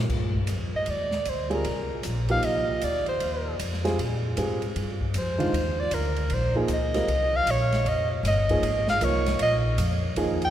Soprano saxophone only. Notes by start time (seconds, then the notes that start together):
0.76 D#5
0.90 D5
1.29 C5
1.54 A#4
2.31 F5
2.45 D#5
2.84 D5
3.09 C5
5.18 C5
5.80 D5
5.94 A#4
6.34 C5
6.74 D#5
7.36 F5
7.50 C#5
7.88 D#5
8.27 D#5
8.89 F5
9.04 C#5
9.42 D#5
10.44 G5